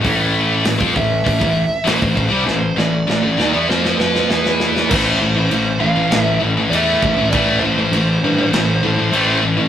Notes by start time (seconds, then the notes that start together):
0.04 A1 A2 E3 A3, kick, open hi-hat
0.65 A1 A2 E3, snare, open hi-hat
0.79 F2 F3 C4, kick
0.94 A1 A2 E3 E5, kick
1.25 A1 A2 E3, kick, open hi-hat
1.40 A1 A2 E3, kick
1.85 A1 A2 E3 C5, snare, open hi-hat
2.01 A1 A2 E3, kick
2.15 A1 A2 E3, kick
2.30 C2 C3 G3
2.45 A1 A2 E3 C5, snare
2.77 A1 A2 E3 D5, snare
3.08 A1 A2 E3, snare
3.22 A1 A2 E3
3.38 D#2 D#3 A#3, snare
3.53 E2 E3 B3
3.69 F2 F3 C4 F4 C5, snare
3.85 snare
3.98 B4, snare
4.15 snare
4.29 E2 E3 B3 E4, snare
4.46 snare
4.60 snare
4.76 snare
4.90 A1 A2 E3 A3 C5, kick, crash
5.21 A1 A2 E3
5.36 A2 E3
5.51 A1 A2 E3, crash
5.80 A1 A2 E3 F5
5.97 A2 E3
6.11 A1 A2 E3, snare, crash
6.21 E5
6.41 A1 A2 E3
6.57 A2 E3
6.71 E2 A2 E3 A3 E5, crash
7.02 A1 A2 E3, kick
7.17 A2 E3
7.30 A1 A2 E3 A3 D5, kick, crash
7.59 A1 A2 E3 C5
7.77 A2 E3
7.92 A1 A2 E3, crash
8.22 G2 A2 E3
8.37 A2 E3
8.52 A1 A2 E3, snare, crash
8.82 A2 E3
8.96 A2 E3
9.12 A1 A2 E3 A3, crash
9.43 A2 E3
9.57 A2 E3